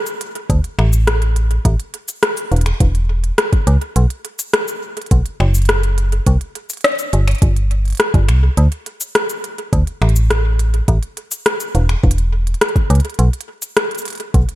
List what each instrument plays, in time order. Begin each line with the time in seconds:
0.06 closed hi-hat, cabasa
0.21 closed hi-hat
0.35 closed hi-hat
0.50 fm bass D2, kick, closed hi-hat
0.64 closed hi-hat
0.79 fm bass A1, finger snap
0.93 closed hi-hat, cabasa
1.07 cross-stick, closed hi-hat
1.22 closed hi-hat
1.36 closed hi-hat
1.51 closed hi-hat
1.65 fm bass A1, kick, closed hi-hat
1.80 closed hi-hat
1.94 closed hi-hat
2.08 closed hi-hat, cabasa
2.23 cross-stick, closed hi-hat
2.37 closed hi-hat, cabasa
2.52 fm bass E1, closed hi-hat
2.56 closed hi-hat
2.61 closed hi-hat
2.66 finger snap, closed hi-hat
2.80 fm bass E1, kick, closed hi-hat
2.95 closed hi-hat
3.24 closed hi-hat
3.38 cross-stick, closed hi-hat
3.53 kick, closed hi-hat
3.67 fm bass C#2, closed hi-hat
3.81 closed hi-hat
3.96 fm bass B1, closed hi-hat
4.10 closed hi-hat
4.25 closed hi-hat
4.39 closed hi-hat, cabasa
4.53 cross-stick, closed hi-hat
4.68 cabasa
4.97 closed hi-hat
5.01 closed hi-hat
5.06 closed hi-hat
5.11 fm bass B1, kick, closed hi-hat
5.26 closed hi-hat
5.40 fm bass F#1, finger snap
5.55 closed hi-hat, cabasa
5.58 closed hi-hat
5.62 closed hi-hat
5.65 cross-stick, closed hi-hat
5.69 closed hi-hat
5.83 closed hi-hat
5.98 closed hi-hat
6.12 closed hi-hat
6.26 fm bass C2, kick, closed hi-hat
6.41 closed hi-hat
6.55 closed hi-hat
6.70 closed hi-hat, cabasa
6.73 closed hi-hat
6.77 closed hi-hat
6.81 cross-stick, closed hi-hat
6.84 closed hi-hat
6.92 closed hi-hat
6.95 closed hi-hat
6.99 closed hi-hat, cabasa
7.13 fm bass G1, closed hi-hat
7.28 finger snap, closed hi-hat
7.31 closed hi-hat
7.35 closed hi-hat
7.38 fm bass G1, closed hi-hat
7.42 kick, closed hi-hat
7.56 closed hi-hat
7.71 closed hi-hat
7.85 closed hi-hat
7.88 closed hi-hat
7.90 closed hi-hat
7.92 closed hi-hat
7.95 closed hi-hat
7.97 cross-stick, closed hi-hat
8.00 closed hi-hat
8.14 fm bass G1, kick, closed hi-hat
8.29 fm bass C2, finger snap, closed hi-hat
8.57 fm bass D2, closed hi-hat
8.72 closed hi-hat
8.86 closed hi-hat
9.01 closed hi-hat, cabasa
9.15 cross-stick, closed hi-hat
9.29 closed hi-hat, cabasa
9.44 closed hi-hat
9.58 closed hi-hat
9.73 fm bass D2, kick, closed hi-hat
9.87 closed hi-hat
10.02 fm bass A1, finger snap
10.09 closed hi-hat
10.16 cabasa
10.30 cross-stick, closed hi-hat
10.59 closed hi-hat
10.74 closed hi-hat
10.88 fm bass A1, kick, closed hi-hat
11.03 closed hi-hat
11.17 closed hi-hat
11.31 closed hi-hat, cabasa
11.46 cross-stick, closed hi-hat
11.60 closed hi-hat, cabasa
11.75 fm bass E1, closed hi-hat
11.89 finger snap, closed hi-hat
12.04 fm bass E1, kick
12.11 closed hi-hat
12.18 closed hi-hat
12.47 closed hi-hat
12.54 closed hi-hat
12.61 cross-stick, closed hi-hat
12.69 closed hi-hat
12.76 kick, closed hi-hat
12.90 fm bass C#2, closed hi-hat
12.95 closed hi-hat
13.00 closed hi-hat
13.05 closed hi-hat
13.10 closed hi-hat
13.14 closed hi-hat
13.19 fm bass B1, closed hi-hat
13.33 closed hi-hat
13.41 closed hi-hat
13.62 closed hi-hat, cabasa
13.77 cross-stick, closed hi-hat
13.91 closed hi-hat
13.95 closed hi-hat
13.98 closed hi-hat, cabasa
14.02 closed hi-hat
14.05 closed hi-hat
14.08 closed hi-hat
14.10 closed hi-hat
14.13 closed hi-hat
14.15 closed hi-hat
14.18 closed hi-hat
14.20 closed hi-hat
14.34 fm bass B1, kick, closed hi-hat
14.49 closed hi-hat